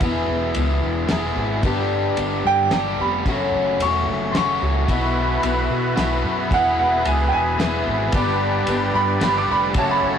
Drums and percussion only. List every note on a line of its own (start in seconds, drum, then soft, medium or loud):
0.01 kick loud
0.01 ride medium
0.55 ride medium
1.09 snare medium
1.09 ride medium
1.63 kick loud
1.63 ride medium
2.17 ride medium
2.71 snare medium
2.71 ride medium
3.26 kick loud
3.26 ride medium
3.80 ride medium
4.35 snare medium
4.35 ride medium
4.89 kick loud
4.89 ride medium
5.43 ride medium
5.97 snare medium
5.97 ride medium
6.51 kick loud
6.51 ride medium
7.05 ride medium
7.60 snare medium
7.60 ride medium
8.12 kick loud
8.12 ride medium
8.67 ride medium
9.21 snare medium
9.21 ride medium
9.74 kick loud
9.74 ride medium